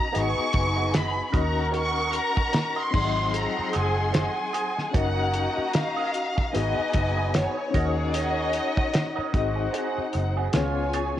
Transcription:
Already playing: reed electric piano C#4 D#4 F#4 A#4 D#5, string section F#4 D#5 A#5, violin section A#5
0.12 fingered electric bass G#1, reed electric piano B3 D#4 F#4 G#4 D#5, clean electric guitar B3 F#4 G#4 D#5, horn section B3 D#4 G#4, string section D#4 B4 G#5, violin section C#6, closed hi-hat
0.53 fingered electric bass F#1, muted clean electric guitar stroke, kick, closed hi-hat
0.76 clean electric guitar B3 F#4 G#4 D#5
0.93 clean electric guitar B3 F#4 G#4 D#5, violin section B5, snare, closed hi-hat
1.17 muted clean electric guitar stroke
1.27 reed electric piano C#4, violin section B5
1.32 fingered electric bass D#2, clean electric guitar C#4 F#4 A#4 D#5, horn section C#4 D#4 F#4, reed electric piano D#4 F#4 A#4, string section A#4 F#5 C#6, violin section A#5, kick, closed hi-hat
1.37 reed electric piano D#5
1.56 muted clean electric guitar stroke
1.71 clean electric guitar C#4 F#4 A#4 D#5, violin section C#6, closed hi-hat
2.13 violin section A#5, closed hi-hat
2.36 muted clean electric guitar stroke, muted fingered electric bass stroke, kick
2.52 muted clean electric guitar stroke, snare, closed hi-hat
2.76 clean electric guitar C#4 F#4 A#4 D#5, violin section C6
2.91 fingered electric bass G#1, horn section F3 G#3 C4, reed electric piano F#3 C4 D#4, string section G#4 F#5 C6, muted clean electric guitar stroke, kick, crash
2.96 reed electric piano G#4 D5
3.04 reed electric piano D#5
3.16 muted clean electric guitar stroke
3.34 violin section A#5, closed hi-hat
3.57 muted clean electric guitar stroke, muted fingered electric bass stroke
3.73 fingered electric bass F#1, clean electric guitar D#4 F#4 C5 D#5, violin section G#5, closed hi-hat
3.97 muted clean electric guitar stroke
4.12 clean electric guitar D#4 F#4 C5 D#5, violin section G#5, snare, closed hi-hat
4.37 muted clean electric guitar stroke
4.53 clean electric guitar D#4 F#4 C5 D#5, closed hi-hat
4.77 muted clean electric guitar stroke, snare
4.91 fingered electric bass F#1, horn section F#3 A#3 D#4, reed electric piano C#4 D#4 F#4, clean electric guitar C#4 F#4 A#4 D#5, string section F#4 D#5 A#5, kick, closed hi-hat
4.96 reed electric piano A#4 D#5, violin section F#5
5.34 closed hi-hat
5.57 muted clean electric guitar stroke, muted fingered electric bass stroke
5.74 violin section F5, muted clean electric guitar stroke, snare, closed hi-hat
5.97 clean electric guitar C#4 F#4 A#4 D#5
6.14 muted clean electric guitar stroke, closed hi-hat
6.36 muted clean electric guitar stroke, kick
6.53 fingered electric bass G#1, reed electric piano B3 D#4 F#4 G#4 D#5, horn section B3 D#4 F#4, string section D#4 B4 G#5, clean electric guitar D#4 F#4 B4 D#5, violin section D#5, closed hi-hat
6.79 muted fingered electric bass stroke
6.93 fingered electric bass F#1, muted clean electric guitar stroke, kick, closed hi-hat
7.17 clean electric guitar D#4 F#4 B4 D#5
7.34 clean electric guitar D#4 F#4 B4 D#5, violin section C#5, snare, closed hi-hat
7.57 muted clean electric guitar stroke
7.71 reed electric piano C#4 D#4 F#4, clean electric guitar C#4 F#4, horn section C#4, string section D#4 C#5 F#5, kick, closed hi-hat
7.75 fingered electric bass D#2, horn section D#4 G#4, clean electric guitar A#4 D#5, reed electric piano A#4 D#5
7.97 violin section D#5, muted clean electric guitar stroke
8.13 clean electric guitar C#4 F#4 A#4 D#5, closed hi-hat
8.53 closed hi-hat
8.77 muted clean electric guitar stroke, muted fingered electric bass stroke, kick
8.93 muted clean electric guitar stroke, snare, closed hi-hat
9.16 clean electric guitar C#4 F#4 A#4 D#5, muted fingered electric bass stroke
9.32 fingered electric bass G#1, reed electric piano C4 D#4 F#4 G#4, horn section C4 D#4 F#4, string section D#4 C5 F#5, muted clean electric guitar stroke, kick, closed hi-hat
9.37 reed electric piano D#5
9.56 muted clean electric guitar stroke
9.73 clean electric guitar C4 F#4 G#4 D#5, closed hi-hat
9.98 muted fingered electric bass stroke
10.13 fingered electric bass F#1, muted clean electric guitar stroke, closed hi-hat
10.37 clean electric guitar C4 F#4 G#4 D#5
10.53 fingered electric bass C#2, reed electric piano B3 C#4 F4 G#4 C#5, horn section B3 C#4 F4, clean electric guitar B3 F4 G#4 C#5, string section F4 C#5 G#5, snare, closed hi-hat
10.77 muted clean electric guitar stroke
10.94 clean electric guitar B3 F4 G#4 C#5, closed hi-hat

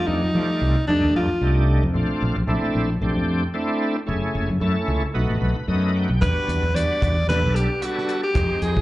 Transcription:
Already playing: tonewheel organ G3 A3 D4 D#4
0.07 fretless electric bass F2, alto saxophone D#4
0.23 fretless electric bass F3
0.34 fretless electric bass F3, tonewheel organ G3 A3 F4 D5
0.61 fretless electric bass C2
0.76 muted fretless electric bass stroke
0.88 fretless electric bass F2, tonewheel organ G3 A3 D4 D#4, alto saxophone D4
1.03 fretless electric bass D#2
1.15 fretless electric bass F2, alto saxophone F4
1.30 muted fretless electric bass stroke
1.41 fretless electric bass C2, tonewheel organ G3 A3 D4 D#4
1.83 fretless electric bass F2
1.94 fretless electric bass A#1, tonewheel organ A3 C4 D4 F4
2.10 muted fretless electric bass stroke
2.22 fretless electric bass A#1
2.37 fretless electric bass A#1
2.47 fretless electric bass A#1, tonewheel organ A3 C4 D4 E4
2.63 muted fretless electric bass stroke
2.75 fretless electric bass A#1
3.01 fretless electric bass A#1, tonewheel organ A3 C4 D4 G4
3.16 fretless electric bass F2
3.54 tonewheel organ A3 C4 D4 E4
4.07 fretless electric bass F#1, tonewheel organ A3 C#4 E4 G#4
4.35 fretless electric bass F#1
4.50 fretless electric bass F#2
4.60 fretless electric bass F#2, tonewheel organ A3 C#4 E4 A4
4.88 fretless electric bass C#2
5.04 muted fretless electric bass stroke
5.14 fretless electric bass B1, tonewheel organ A3 B3 D#4 F#4
5.30 fretless electric bass A1
5.41 fretless electric bass B1, tonewheel organ B4
5.57 muted fretless electric bass stroke
5.68 fretless electric bass F#2, tonewheel organ A3 B3 D#4 F#4 D#5
5.96 tonewheel organ G5
6.09 fretless electric bass B1
6.21 fretless electric bass E2, tonewheel organ G3 B3 D4 F#4, alto saxophone B4, kick, closed hi-hat
6.37 muted fretless electric bass stroke
6.48 fretless electric bass E2, closed hi-hat
6.63 fretless electric bass E2
6.74 fretless electric bass E2, tonewheel organ G3 B3 D4 F#4, alto saxophone D5, closed hi-hat
6.90 muted fretless electric bass stroke
7.02 fretless electric bass E2, kick, closed hi-hat
7.27 fretless electric bass E2, tonewheel organ G3 B3 D4 A4, alto saxophone B4, snare, closed hi-hat
7.43 fretless electric bass B1
7.55 alto saxophone G4, closed hi-hat
7.82 tonewheel organ G3 B3 D4 A4, alto saxophone F#4, closed hi-hat
7.98 snare
8.09 closed hi-hat
8.23 alto saxophone G4
8.34 fretless electric bass F2, tonewheel organ G#3 C4 D#4 G4, kick, closed hi-hat
8.62 fretless electric bass F2, alto saxophone G#4, closed hi-hat
8.77 fretless electric bass F3, kick

